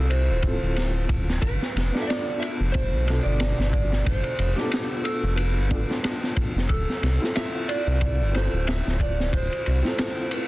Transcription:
Already playing: analog synth bass C2, felt piano C4 E4 F4 A4, electric slide guitar A4
0.10 electric slide guitar C5, ride
0.30 analog synth bass D1
0.42 felt piano C4 E4, kick, ride
0.46 felt piano F4 A4
0.62 analog synth bass D1
0.76 snare, ride
1.09 analog synth bass D1, kick, ride
1.30 snare
1.42 analog synth bass G1, electric slide guitar B4, kick, ride
1.62 snare
1.75 analog synth bass F1, snare, ride
1.92 felt piano B3 D4 F4, snare
1.97 felt piano A4
2.02 electric slide guitar E5
2.07 electric slide guitar D5, snare, ride
2.40 electric slide guitar E5, ride
2.60 analog synth bass F1
2.72 electric slide guitar C5, kick, ride
2.92 analog synth bass B1
3.04 felt piano B2 D4 F4, ride
3.10 felt piano A4, snare
3.23 analog synth bass G1, electric slide guitar D5
3.40 snare, ride
3.58 analog synth bass G1, snare
3.71 electric slide guitar D5, kick, ride
3.93 snare
4.05 analog synth bass G1, electric slide guitar C5, kick, ride
4.24 ride
4.39 analog synth bass F1, ride
4.56 felt piano B3 D4 F4, electric slide guitar G4, snare
4.61 felt piano A4
4.72 snare, ride
5.04 electric slide guitar A4, ride
5.23 analog synth bass F1
5.36 electric slide guitar B4, ride
5.57 analog synth bass G1
5.69 felt piano B3 D4 F4, kick, ride
5.74 felt piano A4
5.91 snare
6.04 snare, ride
6.23 snare
6.36 kick, ride
6.55 analog synth bass F1, snare
6.69 analog synth bass D1, electric slide guitar A4, kick, ride
6.90 snare
7.03 analog synth bass C2, snare, ride
7.19 felt piano C4 E4 F4
7.24 felt piano A4, snare
7.36 electric slide guitar E5, snare, ride
7.68 electric slide guitar D5, ride
7.87 analog synth bass C2
8.01 kick, ride
8.20 analog synth bass G1
8.31 felt piano C4 E4 F4, electric slide guitar C5, ride
8.36 felt piano A4, snare
8.53 analog synth bass D1
8.67 electric slide guitar E5, snare, ride
8.87 analog synth bass D1, snare
9.00 electric slide guitar D5, kick, ride
9.20 snare
9.33 analog synth bass D1, electric slide guitar C5, kick, ride
9.53 ride
9.66 analog synth bass C2, ride
9.82 felt piano C4 E4 F4, snare
9.88 felt piano A4
9.98 snare, ride
10.31 electric slide guitar B4, ride

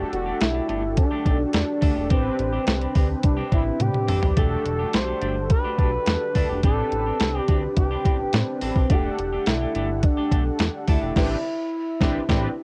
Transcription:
Already playing: clean electric guitar A3 D4 G4, analog polysynth D4 F#4 G4 A4
0.12 analog synth bass E1, analog synth lead F#4, muted clean electric guitar stroke, closed hi-hat
0.26 clean electric guitar A3 D4 G4
0.40 analog synth bass B1, analog synth lead E4, muted clean electric guitar stroke, snare, closed hi-hat
0.54 clean electric guitar A3 D4 G4
0.68 analog synth bass G1, clean electric guitar A3 D4 G4, closed hi-hat
0.83 muted clean electric guitar stroke
0.97 analog synth lead D4, muted clean electric guitar stroke, kick, closed hi-hat
1.11 clean electric guitar A3 D4 G4
1.25 analog synth bass B1, clean electric guitar A3 D4 G4, kick, closed hi-hat
1.39 muted clean electric guitar stroke
1.53 analog synth bass E2, analog synth lead D4, snare, closed hi-hat
1.67 muted clean electric guitar stroke
1.81 analog synth bass D2, clean electric guitar A3 D4 A4, analog synth lead D4, kick, open hi-hat
1.96 analog synth bass E1, clean electric guitar A3 D4 G4
2.10 analog synth bass A1, clean electric guitar C4 D4 G4, analog polysynth C4 D4 G4 B4, analog synth lead C4, kick, closed hi-hat
2.38 analog synth bass A1, muted clean electric guitar stroke, closed hi-hat
2.53 clean electric guitar C4 D4 G4
2.67 analog synth bass C2, muted clean electric guitar stroke, snare, closed hi-hat
2.81 clean electric guitar C4 D4 G4, closed hi-hat
2.95 analog synth bass D2, clean electric guitar C4 D4 G4, kick, open hi-hat
3.09 muted clean electric guitar stroke
3.23 analog synth bass C2, analog synth lead D4, muted clean electric guitar stroke, kick, closed hi-hat
3.37 clean electric guitar C4 D4 G4
3.51 analog synth bass A1, clean electric guitar C4 D4 G4, analog synth lead E4, kick, closed hi-hat
3.65 muted clean electric guitar stroke
3.80 analog synth bass A2, analog synth lead G4, muted clean electric guitar stroke, closed hi-hat, high tom
3.94 muted clean electric guitar stroke, mid tom
4.08 analog synth bass A1, clean electric guitar C4 D4 A4, mid tom, open hi-hat
4.22 analog synth bass B1, clean electric guitar C4 D4 G4, floor tom
4.36 analog synth bass E1, clean electric guitar A3 D4 G4, analog polysynth D4 F#4 G4 A4, analog synth lead A4, kick, closed hi-hat
4.65 analog synth bass E1, muted clean electric guitar stroke, closed hi-hat
4.79 clean electric guitar A3 D4 G4
4.93 analog synth bass B1, analog synth lead C5, snare, closed hi-hat
5.07 clean electric guitar A3 D4 G4
5.21 analog synth bass G1, clean electric guitar A3 D4 G4, closed hi-hat
5.35 muted clean electric guitar stroke
5.50 analog synth lead B4, muted clean electric guitar stroke, kick, closed hi-hat
5.64 clean electric guitar A3 D4 G4
5.78 analog synth bass B1, clean electric guitar A3 D4 G4, kick, closed hi-hat
6.06 analog synth bass E2, snare, closed hi-hat
6.21 muted clean electric guitar stroke
6.35 analog synth bass D2, clean electric guitar A3 D4 A4, kick, open hi-hat
6.49 analog synth bass E1, clean electric guitar A3 D4 G4
6.62 analog synth bass A1, analog polysynth C4 D4 G4 B4, clean electric guitar C4 D4 G4, analog synth lead A4, kick, closed hi-hat
6.92 analog synth bass A1, muted clean electric guitar stroke, closed hi-hat
7.06 clean electric guitar C4 D4 G4
7.20 analog synth bass C2, snare, closed hi-hat
7.35 clean electric guitar C4 D4 G4
7.39 analog synth lead G4
7.48 analog synth bass D2, clean electric guitar C4 D4 G4, kick, closed hi-hat
7.63 muted clean electric guitar stroke
7.76 analog synth bass C2, analog synth lead G4, muted clean electric guitar stroke, kick, closed hi-hat
7.91 clean electric guitar C4 D4 G4
8.05 analog synth bass A1, clean electric guitar C4 D4 G4, kick, closed hi-hat
8.19 muted clean electric guitar stroke
8.33 analog synth bass A2, analog synth lead C4, muted clean electric guitar stroke, snare, closed hi-hat
8.47 muted clean electric guitar stroke
8.61 analog synth bass A1, clean electric guitar C4 D4 A4, open hi-hat
8.76 analog synth bass B1, clean electric guitar C4 D4 G4, kick
8.89 analog synth bass E1, clean electric guitar A3 D4 G4, analog polysynth D4 G4 A4 F#5, analog synth lead G4, kick, closed hi-hat
9.18 analog synth bass E1, muted clean electric guitar stroke, closed hi-hat
9.32 clean electric guitar A3 D4 G4
9.46 analog synth bass B1, analog synth lead E4, snare, closed hi-hat
9.61 clean electric guitar A3 D4 G4
9.75 analog synth bass G1, clean electric guitar A3 D4 G4, closed hi-hat
9.89 muted clean electric guitar stroke
10.03 analog synth lead D4, muted clean electric guitar stroke, kick, closed hi-hat
10.17 clean electric guitar A3 D4 G4
10.31 analog synth bass B1, clean electric guitar A3 D4 G4, kick, closed hi-hat
10.59 analog synth bass E2, snare, closed hi-hat
10.74 muted clean electric guitar stroke
10.88 analog synth bass D2, clean electric guitar A3 D4 A4, analog synth lead E4, kick, open hi-hat
11.02 analog synth bass E1, clean electric guitar A3 D4 G4
11.16 analog synth bass A1, analog polysynth C4 D4 G4 B4, clean electric guitar C4 D4 G4, kick, snare, crash
12.00 analog synth bass A1, analog polysynth C4 D4 G4 B4, clean electric guitar C4 D4 G4, kick, snare
12.28 analog synth bass A1, analog polysynth C4 D4 G4 B4, clean electric guitar C4 D4 G4, kick, snare

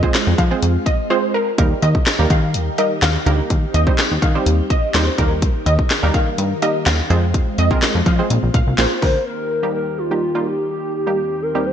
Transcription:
Already playing: string machine G#3 C4 F4
0.03 synth pluck G#3 C4 F4 G#4 C5, kick
0.14 snare, clap, closed hi-hat, tambourine
0.27 analog synth bass F2
0.38 analog synth bass F3, synth pluck F5, kick, closed hi-hat
0.51 synth pluck G#3 C4 F4 G#4 C5
0.62 analog synth bass F2, closed hi-hat
0.86 synth pluck D#5, kick, closed hi-hat
1.10 synth pluck G#3 C4 F4 G#4 C5
1.34 synth pluck A#4
1.58 analog synth bass D#2, string machine D#3 D#4 G4 A#4, synth pluck G3 A#3 D#4 G4 A#4, kick, closed hi-hat
1.82 analog synth bass D#2, synth pluck D#5, closed hi-hat
1.95 kick
2.06 snare, clap, closed hi-hat, tambourine
2.19 analog synth bass D#2, synth pluck G3 A#3 D#4 G4 A#4
2.30 analog synth bass D#3, synth pluck F5, kick, closed hi-hat
2.54 analog synth bass D#2, closed hi-hat
2.78 synth pluck G3 A#3 D#4 G4 A#4 D#5, closed hi-hat
3.02 analog synth bass D#2, synth pluck F5, snare, clap, closed hi-hat, tambourine
3.26 analog synth bass D2, synth pluck G3 A#3 D#4 G4 A#4, closed hi-hat
3.50 analog synth bass D#2, string machine C4, kick, closed hi-hat
3.74 analog synth bass D#2, synth pluck D#5, closed hi-hat
3.87 synth pluck G3 C4 D#4 G4 C5, kick
3.98 snare, clap, closed hi-hat, tambourine
4.11 analog synth bass D#2
4.22 analog synth bass D#3, synth pluck F5, kick, closed hi-hat
4.35 synth pluck G3 C4 D#4 G4 C5
4.46 analog synth bass D#2, closed hi-hat
4.70 synth pluck D#5, kick, closed hi-hat
4.94 analog synth bass D#2, synth pluck G3 C4 D#4 G4 C5, snare, clap, closed hi-hat, tambourine
5.18 analog synth bass D#2, string machine D#3 D#4 A#4, synth pluck G3 A#3 D#4 G4 A#4, kick, closed hi-hat
5.42 kick, closed hi-hat
5.66 analog synth bass D#2, synth pluck D#5, closed hi-hat
5.79 kick
5.90 snare, clap, closed hi-hat, tambourine
6.03 analog synth bass D#2, synth pluck G3 A#3 D#4 G4 A#4
6.14 analog synth bass D#3, synth pluck F5, kick, closed hi-hat
6.38 analog synth bass G2, closed hi-hat
6.62 synth pluck G3 A#3 D#4 G4 A#4 D#5, closed hi-hat
6.86 analog synth bass D#2, synth pluck F5, snare, clap, closed hi-hat, tambourine
7.10 analog synth bass F2, synth pluck G#3 C4 F4 G#4 C5, string machine G#3 C4 F4, closed hi-hat
7.34 kick, closed hi-hat
7.58 analog synth bass F2, synth pluck D#5, closed hi-hat
7.71 synth pluck G#3 C4 F4 G#4 A#4, kick
7.82 snare, clap, closed hi-hat, tambourine
7.95 analog synth bass F2
8.06 analog synth bass F3, synth pluck F5, kick, closed hi-hat
8.19 synth pluck G#3 C4 F4 G#4 C5
8.30 analog synth bass A#1, string machine A#3, closed hi-hat
8.43 analog synth bass A#1
8.54 analog synth bass A#1, synth pluck F5, kick, closed hi-hat
8.67 analog synth bass C2
8.78 analog synth bass A#1, synth pluck A#3 C4 F4 A#4 C5, snare, clap, closed hi-hat, tambourine
9.02 analog synth bass D2, synth pluck A#4, soft synth lead C5, kick, open hi-hat
9.26 string machine D#2 D#3 A#3 G4, soft synth lead A#4
9.63 synth pluck G3 A#3 D#4 G4
9.74 soft synth lead A#4
9.98 soft synth lead F4
10.11 synth pluck G3 A#3 D#4 G4
10.35 synth pluck G3 A#3 D#4 F4
10.46 soft synth lead G4
10.71 soft synth lead G4
10.95 soft synth lead G4
11.07 synth pluck G3 A#3 D#4 G4
11.18 string machine C4
11.43 soft synth lead A#4
11.55 synth pluck D#2 G3 C4 D#4 G4
11.66 soft synth lead C5

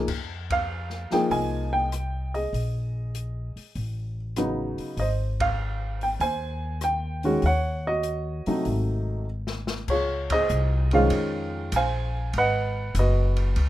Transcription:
0.08 upright bass F2, kick, crash
0.50 grand piano F5, kick, ride
0.90 snare
1.11 grand piano F3 A#3 D#4 G#4 G5, muted upright bass stroke, snare, open hi-hat
1.30 upright bass C2, grand piano D#5 G#5, open hi-hat
1.73 grand piano G5
1.92 cross-stick, closed hi-hat
2.34 grand piano G#4 D#5, open hi-hat
2.53 upright bass A#1, open hi-hat
3.15 closed hi-hat
3.56 muted upright bass stroke, open hi-hat
3.75 upright bass A1, open hi-hat
4.36 grand piano C#3 F#3 B3 D#4, cross-stick, closed hi-hat
4.78 muted upright bass stroke, open hi-hat
4.97 upright bass G#1, grand piano D#5, open hi-hat
5.01 grand piano C5
5.40 grand piano F5, kick, ride
6.01 grand piano G5, open hi-hat
6.20 upright bass D#2, grand piano C5 G#5, open hi-hat
6.81 grand piano G5, cross-stick, closed hi-hat
7.23 grand piano D#3 G#3 C#4 F#4, open hi-hat
7.42 upright bass D#2, grand piano F#5, open hi-hat
7.47 grand piano C#5
7.87 grand piano F#4 D#5
8.03 closed hi-hat
8.46 grand piano C3 F#3 A3 D#4, muted upright bass stroke, open hi-hat
8.65 upright bass G#1, open hi-hat
9.47 snare
9.67 snare
9.88 upright bass C#2, grand piano F4 G#4 C#5, kick, crash
10.30 grand piano G#4 C5 D#5, kick, ride
10.49 upright bass C2, hi-hat pedal
10.91 grand piano D#3 G#3 C#4 F4 G#4 C5 F5, ride
11.10 upright bass F2, ride
11.72 upright bass A#1, hi-hat pedal, ride
11.76 grand piano C5 F5 G#5
12.33 upright bass G#1, ride
12.38 grand piano B4 D#5 F#5
12.95 upright bass F#1, hi-hat pedal, ride
12.99 grand piano F#4 B4 D#5
13.37 ride
13.56 upright bass C#2, ride

